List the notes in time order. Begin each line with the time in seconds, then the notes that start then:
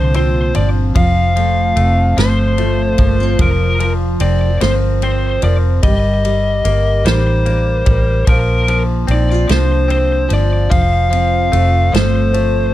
Already playing: C2 A#2 D3 F3 A#3 C4 F4 C5
0.14 C4 F4 C5, ride
0.55 G1 F3 C4 D5, ride
0.95 F1 F3 F4 F5, kick, ride
1.36 F3 A3, ride
1.76 F1 A3 C4, ride
2.17 G1 F3 A3 C5, snare, ride
2.58 A3 F4, ride
2.98 G1 F3 A#3, kick, ride
3.20 C4
3.39 F1 F3 A#4 D5, kick, ride
3.80 F3 F4 A#4, ride
4.20 F1 C4 A#4 D5, ride
4.61 G1 F3 C4 C5, snare, ride
5.02 C4 C5 D5, ride
5.42 F1 F3 A#4 D5, ride
5.83 G1 G3 D#5, kick, ride
6.25 G3 G4, ride
6.65 G1 A#3 A#4, ride
7.05 A1 G3 D#4 C5, snare, ride
7.46 A#3 D5, ride
7.86 A1 G3 A#4, kick, ride
8.27 A#1 F3 A#3 A#4 C5, kick, ride
8.68 F3 D4 A#4, ride
9.07 A#1 C4 D#4 D5, ride
9.31 F4
9.48 C2 F3 D4 C5, snare, ride
9.88 C4 C5, ride
10.29 G1 F3 F4, ride
10.33 D5
10.70 F1 F3 C5 F5, kick, ride
11.10 F3 C4, ride
11.52 F1 A3 F4, ride
11.92 G1 F3 A3 C5, snare, ride
12.33 A3 C5, ride